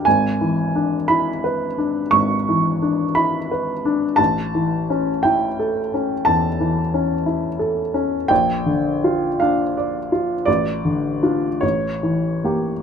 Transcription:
\new Staff \with { instrumentName = "Grand piano" } { \time 12/8 \key a \phrygian \tempo 4. = 57 << { gis''4. b''4. cis'''4. b''4. | a''4. g''4. a''2. | g''4. f''4. d''4. cis''4. | } \\ { gis,,8 e8 d'8 e'8 b'8 d'8 gis,,8 e8 d'8 e'8 b'8 d'8 | a,,8 e8 cis'8 e'8 a'8 cis'8 e,8 e8 cis'8 e'8 a'8 cis'8 | bes,,8 d8 f'8 d'8 d''8 f'8 a,,8 d8 <d' f'>8 a,,8 e8 <bes g'>8 | } >> }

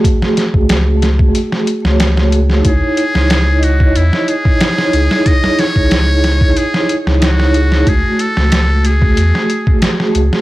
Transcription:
<<
  \new Staff \with { instrumentName = "Muted trumpet" } { \time 4/4 \key cis \minor \tempo 4 = 92 r1 | gis'4. fis'8 e'8 gis'4. | dis''8 cis''4. gis'8 r8 fis'4 | gis'8 a'4 gis'4. r4 | }
  \new Staff \with { instrumentName = "Vibraphone" } { \time 4/4 \key cis \minor <a fis' gis'>4. <a fis' gis'>4~ <a fis' gis'>16 <a fis' cis''>8. <a fis' gis'>8 | <dis' e' cis''>4. <e' cis'' dis''>4. <dis' e'>16 <dis' e' cis''>16 <dis' e' gis'>8 | <dis' e' cis''>4. <dis' e'>4. <dis' e'>16 <dis' e' cis''>16 <dis' e' gis'>8 | <a fis'>4. <a fis' gis'>4. <a fis' gis'>16 <a fis' gis'>16 <a fis' gis'>8 | }
  \new Staff \with { instrumentName = "Sub bass" } { \clef bass \time 4/4 \key cis \minor r8. cis,4~ cis,16 r8. cis,4~ cis,16 | cis,16 r8 cis,4~ cis,16 e,16 r4 r16 cis,16 r16 | r8. cis,4~ cis,16 r8. cis,4~ cis,16 | cis,16 r8 cis,4~ cis,16 e,16 r4 r16 cis,16 r16 | }
  \new DrumStaff \with { instrumentName = "Drums" } \drummode { \time 4/4 <hh bd>16 sn16 <hh sn>16 bd16 <hh sn>8 <hh sn>16 bd16 hh16 sn16 hh16 sn16 <hh sn>16 sn16 hh16 sn16 | <hh bd>8 hh16 sn16 <hh sn>8 hh16 bd16 hh16 sn16 hh16 bd16 <hh sn>16 sn16 hh16 sn16 | <hh bd>16 sn16 <hh sn>16 bd16 <hh sn>8 <hh sn>16 bd16 hh16 sn16 hh16 sn16 <hh sn>16 sn16 hh16 sn16 | <hh bd>8 hh16 sn16 <hh sn>8 hh16 bd16 hh16 sn16 hh16 bd16 <hh sn>16 sn16 hh16 sn16 | }
>>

